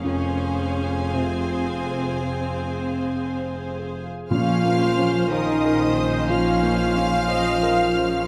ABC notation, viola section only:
X:1
M:4/4
L:1/8
Q:1/4=57
K:Bbm
V:1 name="Viola section"
[Ac]8 | D c B c D2 e D |]